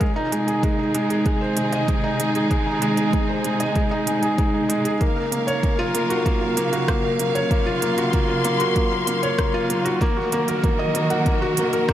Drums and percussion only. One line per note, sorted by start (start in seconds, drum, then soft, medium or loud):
0.01 kick loud
0.01 closed hi-hat soft
0.32 closed hi-hat medium
0.48 closed hi-hat soft
0.63 kick loud
0.63 closed hi-hat soft
0.95 closed hi-hat medium
1.10 closed hi-hat soft
1.26 kick loud
1.26 closed hi-hat soft
1.57 closed hi-hat medium
1.73 closed hi-hat soft
1.88 kick loud
1.88 closed hi-hat soft
2.20 closed hi-hat medium
2.35 closed hi-hat soft
2.51 kick loud
2.51 closed hi-hat soft
2.82 closed hi-hat medium
2.97 closed hi-hat soft
3.13 kick loud
3.13 closed hi-hat soft
3.44 closed hi-hat medium
3.60 closed hi-hat soft
3.75 kick medium
3.75 closed hi-hat soft
4.07 closed hi-hat medium
4.23 closed hi-hat soft
4.38 kick loud
4.38 closed hi-hat soft
4.70 closed hi-hat medium
4.85 closed hi-hat soft
5.01 kick loud
5.01 closed hi-hat soft
5.32 closed hi-hat medium
5.48 closed hi-hat soft
5.63 kick loud
5.63 closed hi-hat soft
5.95 closed hi-hat medium
6.10 closed hi-hat soft
6.26 kick loud
6.26 closed hi-hat soft
6.57 closed hi-hat medium
6.73 closed hi-hat soft
6.88 kick loud
6.88 cross-stick medium
6.88 closed hi-hat soft
7.19 closed hi-hat medium
7.35 closed hi-hat soft
7.51 kick loud
7.51 closed hi-hat soft
7.82 closed hi-hat medium
7.98 closed hi-hat soft
8.13 kick loud
8.13 closed hi-hat soft
8.44 closed hi-hat medium
8.60 closed hi-hat soft
8.76 kick medium
8.76 closed hi-hat soft
9.07 closed hi-hat medium
9.23 closed hi-hat soft
9.39 kick loud
9.39 cross-stick medium
9.39 closed hi-hat soft
9.70 closed hi-hat medium
9.86 closed hi-hat soft
10.01 kick loud
10.01 closed hi-hat soft
10.32 closed hi-hat medium
10.48 closed hi-hat soft
10.64 kick loud
10.64 closed hi-hat soft
10.95 closed hi-hat medium
11.10 closed hi-hat soft
11.26 kick loud
11.26 closed hi-hat soft
11.57 closed hi-hat medium
11.73 closed hi-hat soft
11.89 kick loud
11.89 cross-stick medium
11.89 closed hi-hat soft